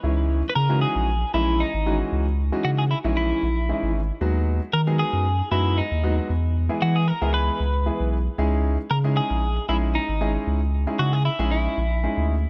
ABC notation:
X:1
M:4/4
L:1/16
Q:1/4=115
K:C#dor
V:1 name="Clean electric guitar"
z3 z/2 B/2 A2 G4 E2 D3 z | z4 F G E2 E6 z2 | z4 A2 G4 E2 D3 z | z4 F G A2 B6 z2 |
z4 A2 G4 E2 D3 z | z4 F G E2 E6 z2 |]
V:2 name="Grand piano"
[E,G,CDE]3 z2 [E,G,CDF]3 z2 [E,G,CDE]2 z2 [E,G,CDF]2- | [E,G,CDF] z2 [E,G,CDF]2 z2 [E,G,CDE]3 z2 [E,G,CDE]2 z2 | [F,G,B,DF]3 z2 [F,G,B,DG]3 z2 [F,G,B,DF]2 z2 [F,G,B,DF]2 | z3 [E,G,B,EG]2 z2 [E,G,B,EG]3 z2 [E,G,B,EG]2 z2 |
[G,CDEG]3 z2 [G,CDEG]3 z2 [G,CDEG]2 z2 [G,CDEG]2- | [G,CDEG] z2 [G,CDEG]2 z2 [G,CDEG]3 z2 [G,CDEG]2 z2 |]
V:3 name="Sub bass" clef=bass
C,,4 C,3 A,,,3 A,,,3 G,,,3 | C,,4 C,3 A,,,3 A,,,3 G,,,3 | D,,4 D,3 F,,3 F,,3 D,,3 | E,,4 E,3 C,,3 C,,3 B,,,3 |
C,,4 C,3 A,,,3 A,,,3 G,,,3 | C,,4 C,3 A,,,3 A,,,3 =D,,3 |]